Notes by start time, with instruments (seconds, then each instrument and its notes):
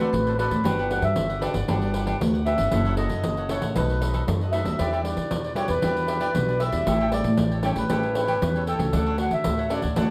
Already playing: nylon-string guitar D3, accordion B4
0.00 nylon-string guitar A3 C4 F#4, cavaquinho A4 C5 D5, pandeiro
0.12 upright bass A1, nylon-string guitar A2, pandeiro
0.26 cavaquinho A4 C5 D5, pandeiro
0.38 nylon-string guitar A3 C4 F#4, cavaquinho F#4 A4 C5 D5, accordion B4, pandeiro
0.50 upright bass D2, cavaquinho A4 C5 D5, pandeiro
0.64 upright bass G1, nylon-string guitar G3 D4 F#4 B4, cavaquinho D4 G4 B4 F#5, pandeiro
0.79 cavaquinho D4 G4 B4 F#5, pandeiro
0.90 nylon-string guitar D4 F#4 B4, cavaquinho D4 G4 B4 F#5, accordion F#5, pandeiro
1.02 upright bass G2, accordion E5, pandeiro
1.16 upright bass G1, nylon-string guitar D3, pandeiro
1.29 cavaquinho G4 B4 F#5, pandeiro
1.40 nylon-string guitar D4 F#4 B4, cavaquinho D4 G4 B4 F#5, accordion D5, pandeiro
1.54 upright bass G1, cavaquinho G4 B4 F#5, pandeiro
1.68 upright bass G1, nylon-string guitar G3 D4 F#4 B4, cavaquinho D4 G4 B4 F#5, pandeiro
1.82 pandeiro
1.94 cavaquinho D4 G4 B4 F#5, pandeiro
2.06 cavaquinho D4 G4 B4 F#5, pandeiro
2.20 upright bass D2, nylon-string guitar D3 D4 F#4 B4, pandeiro
2.34 cavaquinho G4 B4 F#5, pandeiro
2.46 cavaquinho D4 G4 B4 F#5, nylon-string guitar D4 F#4 B4, accordion E5, pandeiro
2.57 upright bass G1, nylon-string guitar C#4 E4 A4, cavaquinho G4 B4 F#5, pandeiro
2.71 upright bass F#1, nylon-string guitar F#3, cavaquinho E4 A4 C#5 F#5, pandeiro
2.85 cavaquinho E4 A4 C#5 F#5, pandeiro
2.97 nylon-string guitar C#4 E4 A4, cavaquinho E4 A4 C#5 F#5, accordion D#5, pandeiro
3.09 upright bass F#2, pandeiro
3.22 upright bass F#1, nylon-string guitar C#3, pandeiro
3.37 cavaquinho A4 C#5 F#5, pandeiro
3.49 nylon-string guitar C#4 E4 A4, cavaquinho E4 A4 C#5 F#5, accordion C#5, pandeiro
3.62 upright bass A1, cavaquinho A4 C#5 F#5, pandeiro
3.75 upright bass B1, nylon-string guitar B2 A3 D#4 F#4, cavaquinho D#4 A4 B4 D#5, accordion B4, pandeiro
3.89 pandeiro
4.01 cavaquinho D#4 A4 B4 D#5, pandeiro
4.13 cavaquinho D#4 A4 B4 D#5, pandeiro
4.27 upright bass F#2, nylon-string guitar F#3 A3 D#4 F#4, pandeiro
4.41 cavaquinho A4 B4 D#5, pandeiro
4.52 nylon-string guitar A3 D#4 F#4, cavaquinho D#4 A4 B4 D#5, accordion E5, pandeiro
4.64 upright bass D#2, nylon-string guitar G3 D4 F#4, cavaquinho A4 B4 D#5, pandeiro
4.79 upright bass E2, nylon-string guitar E3, cavaquinho E4 G4 B4 D5, pandeiro
4.92 cavaquinho E4 G4 B4 D5, pandeiro
5.03 nylon-string guitar G3 D4, cavaquinho E4 G4 B4 D5, accordion D5, pandeiro
5.17 upright bass E3, pandeiro
5.30 upright bass E2, nylon-string guitar B2, pandeiro
5.44 cavaquinho G4 B4 D5, pandeiro
5.55 nylon-string guitar G3 D4 F#4, cavaquinho E4 G4 B4 D5, accordion C#5, pandeiro
5.68 upright bass E2, cavaquinho G4 B4 D5, accordion B4, pandeiro
5.82 upright bass E2, nylon-string guitar E3 G3 D4 F#4, cavaquinho E4 G4 B4 D5, pandeiro
5.97 pandeiro
6.07 cavaquinho E4 G4 B4 D5, pandeiro
6.20 cavaquinho E4 G4 B4 D5, pandeiro
6.35 upright bass B1, nylon-string guitar B2 G3 D4 F#4, pandeiro
6.48 cavaquinho G4 B4 D5, pandeiro
6.60 cavaquinho E4 G4 B4 D5, accordion E5, pandeiro
6.72 upright bass E2, nylon-string guitar G3 C#4 E4, cavaquinho G4 B4 D5, pandeiro
6.87 upright bass A1, nylon-string guitar A2, cavaquinho G4 A4 C#5 G5, pandeiro
7.00 cavaquinho G4 A4 C#5 G5, pandeiro
7.12 nylon-string guitar G3 E4, cavaquinho G4 A4 G5, accordion D5, pandeiro
7.24 upright bass A2, pandeiro
7.37 upright bass A1, nylon-string guitar E3, pandeiro
7.52 cavaquinho A4 C#5 G5, pandeiro
7.63 nylon-string guitar G3 C#4 E4, cavaquinho G4 A4 C#5 G5, accordion C#5, pandeiro
7.76 upright bass A1, cavaquinho A4 C#5 G5, accordion B4, pandeiro
7.90 upright bass A1, nylon-string guitar A2 G3 C#4 E4, cavaquinho G4 A4 C#5 G5, pandeiro
8.03 pandeiro
8.15 cavaquinho G4 A4 C#5 G5, pandeiro
8.27 cavaquinho G4 A4 C#5 G5, pandeiro
8.42 upright bass E2, nylon-string guitar E3 G3 C#4 E4, pandeiro
8.55 cavaquinho A4 C#5 G5, pandeiro
8.67 cavaquinho G4 A4 C#5 G5, accordion A4, pandeiro
8.79 upright bass C#2, nylon-string guitar A3 C#4 F#4, cavaquinho A4 C#5 G5, pandeiro
8.93 upright bass D2, nylon-string guitar D3, cavaquinho D4 A4 C#5 F#5, pandeiro
9.06 cavaquinho D4 A4 C#5 F#5, pandeiro
9.18 nylon-string guitar A3 F#4, cavaquinho D4 A4 C#5 F#5, accordion F#5, pandeiro
9.31 upright bass D3, accordion E5, pandeiro
9.44 upright bass D2, nylon-string guitar A2, pandeiro
9.58 cavaquinho A4 C#5 F#5, pandeiro
9.69 nylon-string guitar A3 C#4 F#4, cavaquinho D4 A4 C#5 F#5, accordion D5, pandeiro
9.82 upright bass D2, cavaquinho A4 C#5 F#5, pandeiro
9.96 upright bass D2, nylon-string guitar D3 A3 C#4 F#4, cavaquinho D4 A4 C#5 F#5, pandeiro